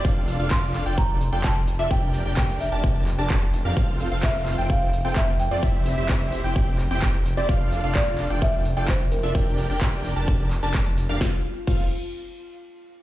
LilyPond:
<<
  \new Staff \with { instrumentName = "Digital synth lead" } { \time 4/4 \key f \major \tempo 4 = 129 f''8. f''4 g''8. r16 g''8 r8 e''16 | g''8. g''4 a''8. r16 a''8 r8 f''16 | f''8. f''4 g''8. r16 g''8 r8 d''16 | e''8. e''4 g''8. r16 g''8 r8 d''16 |
f''8. f''4 g''8. r16 g''8 r8 e''16 | g''8. g''4 a''8. r16 a''8 r8 f''16 | f''16 r8. f''8 r2 r8 | }
  \new Staff \with { instrumentName = "Marimba" } { \time 4/4 \key f \major r4 c'''4 bes''4 a''4 | g''4 g''8 e''4 r4. | r4 e''4 f''4 e''8 g''8~ | g''4. r2 r8 |
r4 d''4 e''4 c''8 bes'8~ | bes'2. r4 | f'8 r8 f'8 r2 r8 | }
  \new Staff \with { instrumentName = "Supersaw synth" } { \time 4/4 \key f \major <d' f' a' d'' f''>8. <d' f' a' d'' f''>4 <d' f' a' d'' g''>8. r16 <d' f' a' d'' g''>8 r8 <d' f' a' d'' e''>16 | <d' g' bes' d'' g''>8. <d' g' bes' d'' g''>4 <d' g' bes' d'' a''>8. r16 <d' g' bes' d'' a''>8 r8 <d' g' bes' d'' f''>16 | <c' f' c'' f''>8. <c' f' a' c'' f''>4 <c' f' a' c'' g''>8. r16 <c' f' a' c'' g''>8 r8 <c' f' a' c'' d''>16 | <c' e' g' e''>8. <c' e' g' c'' e''>4 <c' e' g' c'' g''>8. r16 <c' e' g' c'' g''>8 r8 <c' e' g' c'' d''>16 |
<d' f' d'' f''>8. <d' f' a' d'' f''>4 <d' f' a' d'' g''>8. r16 <d' f' a' d'' g''>8 r8 <d' f' a' d'' e''>16 | <d' g' bes' d'' g''>8. <d' g' bes' d'' g''>4 <d' g' bes' d'' a''>8. r16 <d' g' bes' d'' a''>8 r8 <d' g' bes' d'' f''>16 | <c' f' a' c'' f''>16 r8. <c' f' a' c'' f''>8 r2 r8 | }
  \new Staff \with { instrumentName = "Detuned saw bass" } { \clef bass \time 4/4 \key f \major f,,8. f,,4 f,,4 f,,4 f,,16 | f,,8. f,,4 f,,4 f,,4 f,16 | f,,8. f,,4 f,,4 f,,4 f,16 | f,,8. f,,4 f,,4 f,,4 f,,16 |
f,,8. f,,4 f,,4 f,,4 f,,16 | f,,8. f,,4 f,,4 f,,4 f,,16 | f,,16 r8. f,,8 r2 r8 | }
  \new DrumStaff \with { instrumentName = "Drums" } \drummode { \time 4/4 <hh bd>16 hh16 hho16 hh16 <hc hh bd>16 hho16 <hc hho>16 hh16 <hh bd>16 hh16 hho16 hh16 <hc hh bd>16 hh16 hho8 | <hh bd>16 hh16 hho16 hh16 <hc hh bd>16 hho16 hho16 hh16 <hh bd>16 hh16 <hc hho>16 hh16 <hc hh bd>16 hh16 hho16 hh16 | <hh bd>16 hh16 hho16 hh16 <hc hh bd>16 hho16 <hc hho>16 hh16 <hh bd>16 hh16 hho16 hh16 <hc hh bd>16 hh16 hho16 hh16 | <hh bd>16 hh16 hho16 hh16 <hc hh bd>16 hho16 hho16 hh16 <hh bd>16 hh16 <hc hho>16 hh16 <hc hh bd>16 hh16 hho16 hh16 |
<hh bd>16 hh16 hho16 hh16 <hc hh bd>16 hho16 <hc hho>16 hh16 <hh bd>16 hh16 hho16 hh16 <hc hh bd>16 hh16 hho16 hh16 | <hh bd>16 hh16 hho16 hh16 <hc hh bd>16 hho16 hho16 hh16 <hh bd>16 hh16 <hc hho>16 hho16 <hc hh bd>16 hh16 hho16 hh16 | <bd sn>4 <cymc bd>4 r4 r4 | }
>>